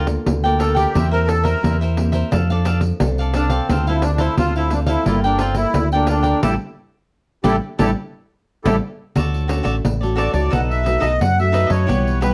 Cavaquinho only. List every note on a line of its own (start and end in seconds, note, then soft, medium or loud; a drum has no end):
0.07 muted cavaquinho stroke soft
0.44 0.58 A#4 medium
0.44 0.59 D5 medium
0.44 0.59 G5 medium
0.59 0.76 F4 soft
0.59 0.76 A#4 soft
0.59 0.75 D5 medium
0.59 0.73 G5 medium
0.75 0.93 A#4 medium
0.75 0.93 D5 medium
0.75 0.92 G5 medium
0.94 1.11 E4 soft
0.94 1.11 A#4 soft
0.94 1.11 C5 soft
0.94 1.10 E5 medium
1.11 1.27 A#4 medium
1.11 1.28 C5 medium
1.11 1.28 E5 medium
1.28 muted cavaquinho stroke soft
1.44 1.62 A#4 soft
1.44 1.62 C5 medium
1.44 1.61 E5 medium
1.63 1.79 E4 soft
1.63 1.80 A#4 soft
1.63 1.80 C5 soft
1.63 1.80 E5 soft
1.81 2.13 A#4 soft
1.81 2.12 C5 medium
1.81 2.11 E5 medium
2.12 2.30 A#4 medium
2.12 2.30 C5 medium
2.12 2.29 E5 medium
2.31 2.48 D4 soft
2.31 2.48 A4 medium
2.31 2.48 D5 soft
2.31 2.49 F5 medium
2.50 2.64 A4 medium
2.50 2.65 D5 medium
2.50 2.66 F5 medium
2.65 2.80 D4 medium
2.65 2.81 A4 medium
2.65 2.81 D5 medium
2.65 2.82 F5 medium
2.81 muted cavaquinho stroke soft
3.19 3.34 A4 medium
3.19 3.35 D5 medium
3.19 3.34 F5 medium
3.34 3.50 D4 medium
3.34 3.51 A4 medium
3.34 3.50 D5 soft
3.34 3.49 F5 medium
3.50 3.68 A4 medium
3.50 3.67 D5 medium
3.50 3.67 F5 medium
3.69 3.85 D4 soft
3.69 3.86 A4 soft
3.69 3.86 C5 medium
3.69 3.86 F5 medium
3.87 4.02 A4 soft
3.87 4.03 C5 medium
3.87 4.03 F5 medium
4.03 muted cavaquinho stroke soft
4.19 4.36 A4 soft
4.19 4.36 C5 medium
4.19 4.35 F5 medium
4.37 4.53 D4 soft
4.37 4.54 A4 soft
4.37 4.54 C5 medium
4.37 4.54 F5 soft
4.56 4.88 A4 soft
4.56 4.86 C5 medium
4.56 4.86 F5 medium
4.87 5.05 A4 medium
4.87 5.04 C5 medium
4.87 5.04 F5 medium
5.06 5.22 F4 soft
5.06 5.22 A#4 soft
5.06 5.23 D5 medium
5.06 5.23 G5 medium
5.24 5.39 A#4 medium
5.24 5.40 D5 medium
5.24 5.39 G5 medium
5.39 5.55 F4 medium
5.39 5.56 A#4 medium
5.39 5.56 D5 medium
5.39 5.56 G5 medium
5.56 muted cavaquinho stroke soft
5.93 6.07 A#4 medium
5.93 6.08 D5 medium
5.93 6.08 G5 medium
6.07 6.24 F4 soft
6.07 6.24 A#4 soft
6.07 6.23 D5 soft
6.07 6.21 G5 medium
6.23 6.41 A#4 medium
6.23 6.41 D5 medium
6.23 6.40 G5 medium
6.43 6.54 G4 medium
6.43 6.54 A4 medium
6.43 6.54 D5 medium
7.44 7.56 G4 medium
7.44 7.56 A4 medium
7.44 7.56 D5 medium
7.79 7.90 G4 medium
7.79 7.90 A4 medium
7.79 7.90 D5 medium
8.66 8.76 G4 medium
8.66 8.76 A4 medium
8.66 8.76 D5 medium
9.15 9.47 F#4 medium
9.15 9.47 A4 medium
9.15 9.48 C#5 medium
9.15 9.49 D5 medium
9.48 9.62 F#4 soft
9.48 9.63 A4 soft
9.48 9.63 C#5 soft
9.48 9.63 D5 medium
9.63 9.74 F#4 medium
9.63 9.75 A4 medium
9.63 9.75 C#5 medium
9.63 9.75 D5 medium
10.01 10.15 A4 soft
10.01 10.16 C#5 soft
10.01 10.17 D5 soft
10.15 10.33 F#4 medium
10.15 10.32 A4 medium
10.15 10.32 C#5 medium
10.15 10.30 D5 medium
10.31 10.50 A4 soft
10.31 10.50 C#5 soft
10.31 10.49 D5 soft
10.50 10.82 D#4 medium
10.50 10.83 A4 medium
10.50 10.84 B4 medium
10.50 10.85 D#5 medium
10.84 10.99 D#4 soft
10.84 10.99 A4 soft
10.84 11.00 B4 soft
10.84 11.00 D#5 medium
11.00 11.11 D#4 medium
11.00 11.11 A4 medium
11.00 11.11 B4 medium
11.00 11.12 D#5 medium
11.52 11.69 D#4 medium
11.52 11.68 A4 medium
11.52 11.67 B4 medium
11.52 11.66 D#5 medium
11.67 11.87 A4 soft
11.67 11.86 B4 soft
11.67 11.85 D#5 soft
11.87 12.19 E4 medium
11.87 12.20 G4 medium
11.87 12.21 B4 medium
11.87 12.21 F#5 medium
12.21 12.34 E4 soft
12.21 12.34 G4 medium
12.21 12.34 B4 medium
12.21 12.34 F#5 medium